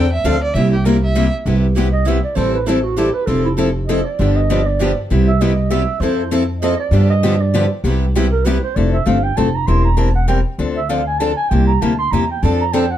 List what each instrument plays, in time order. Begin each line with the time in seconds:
Already playing: upright bass E2, violin G5
0.13 violin E5
0.24 upright bass D2, steel-string acoustic guitar D3 F3 C4 D4 A4, violin F5
0.44 violin D5
0.54 upright bass C2, steel-string acoustic guitar C3 G3 A#3 E4 G4, violin E5
0.73 violin G4
0.85 steel-string acoustic guitar C3 G3 A#3 E4 G4, violin A#4
1.04 violin E5
1.16 steel-string acoustic guitar C3 G3 A#3 E4 G4
1.46 upright bass C2, steel-string acoustic guitar C3 G3 B3 E4 G4
1.77 steel-string acoustic guitar C3 G3 B3 E4 G4
1.93 clarinet D#5
2.07 steel-string acoustic guitar C3 G3 B3 E4 G4, clarinet E5
2.24 clarinet D5
2.36 upright bass A1, steel-string acoustic guitar E3 G3 C4 E4 A4, clarinet C5
2.54 clarinet B4
2.67 steel-string acoustic guitar E3 G3 C4 E4 A4, clarinet A4
2.83 clarinet F#4
2.97 steel-string acoustic guitar E3 G3 C4 E4 A4, clarinet G4
3.13 clarinet B4
3.26 upright bass F1, steel-string acoustic guitar F3 C4 E4 A4, clarinet A4
3.45 clarinet E4
3.58 steel-string acoustic guitar F3 C4 E4 A4
3.87 steel-string acoustic guitar F3 C4 E4 A4, clarinet D#5
4.05 clarinet D5
4.19 upright bass G1, steel-string acoustic guitar D3 F3 B3 D4 G4
4.36 clarinet D#5
4.50 steel-string acoustic guitar D3 F3 B3 D4 G4
4.67 clarinet D5
4.80 steel-string acoustic guitar D3 F3 B3 D4 G4
5.10 upright bass C2, steel-string acoustic guitar C3 G3 B3 E4 G4
5.28 clarinet E5
5.41 steel-string acoustic guitar C3 G3 B3 E4 G4, clarinet D#5
5.70 steel-string acoustic guitar C3 G3 B3 E4 G4, clarinet E5
6.00 upright bass F2, steel-string acoustic guitar F3 C4 E4 A4, clarinet C5
6.31 steel-string acoustic guitar F3 C4 E4 A4
6.61 steel-string acoustic guitar F3 C4 E4 A4, clarinet D#5
6.80 clarinet D5
6.91 upright bass G2, steel-string acoustic guitar D3 F3 B3 D4 G4
7.10 clarinet D#5
7.23 steel-string acoustic guitar D3 F3 B3 D4 G4
7.41 clarinet D5
7.54 steel-string acoustic guitar D3 F3 B3 D4 G4
7.84 upright bass C2, steel-string acoustic guitar C3 G3 B3 E4 G4
8.15 steel-string acoustic guitar C3 G3 B3 E4 G4
8.32 clarinet A#4
8.44 steel-string acoustic guitar C3 G3 B3 E4 G4, clarinet B4
8.64 clarinet C5
8.75 upright bass F1, steel-string acoustic guitar F3 A3 C4 E4 A4, clarinet D5
8.93 clarinet E5
9.06 upright bass G1, steel-string acoustic guitar F3 A3 C4 E4 A4, clarinet F5
9.23 clarinet G5
9.37 upright bass F1, steel-string acoustic guitar F3 A3 C4 E4 A4, clarinet A5
9.55 clarinet A#5
9.66 upright bass E1, steel-string acoustic guitar E3 G3 C4 E4 A#4, clarinet C6
9.84 clarinet A#5
9.97 steel-string acoustic guitar E3 G3 C4 E4 A#4, clarinet A5
10.15 clarinet F#5
10.28 steel-string acoustic guitar E3 G3 C4 E4 A#4, clarinet G5
10.58 upright bass D2, steel-string acoustic guitar D3 F3 C4 D4 A4
10.77 clarinet E5
10.89 steel-string acoustic guitar D3 F3 C4 D4 A4, clarinet F5
11.07 clarinet G#5
11.19 steel-string acoustic guitar D3 F3 C4 D4 A4, clarinet A5
11.37 clarinet G#5
11.49 upright bass C2, steel-string acoustic guitar C3 G3 A#3 E4 G4, clarinet G5
11.67 clarinet A#5
11.81 upright bass D2, steel-string acoustic guitar C3 G3 A#3 E4 G4, clarinet A5
11.99 clarinet C6
12.11 upright bass E2, steel-string acoustic guitar C3 G3 A#3 E4 G4, clarinet A#5
12.31 clarinet G5
12.43 upright bass F2, steel-string acoustic guitar F3 C4 D4 A4, clarinet A5
12.61 clarinet A#5
12.73 steel-string acoustic guitar F3 C4 D4 A4, clarinet G5
12.91 clarinet F#5